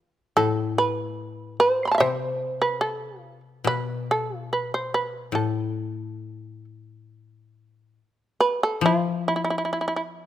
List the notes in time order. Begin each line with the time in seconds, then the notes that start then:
0.37 A2 A4
0.78 B4
1.60 C5
1.85 B5 C6
1.91 F5 A5
1.98 C3 C5 E5
2.62 B4
2.81 A4
3.21 F4
3.64 B2 B4
4.11 A4
4.37 F4
4.53 B4
4.74 C5
4.94 B4
5.32 A2 A4
8.40 B4
8.63 A4
8.81 F3
8.86 F4
9.28 E4
9.36 E4
9.44 E4
9.50 E4
9.58 E4
9.65 E4
9.73 E4
9.81 E4
9.88 E4
9.96 E4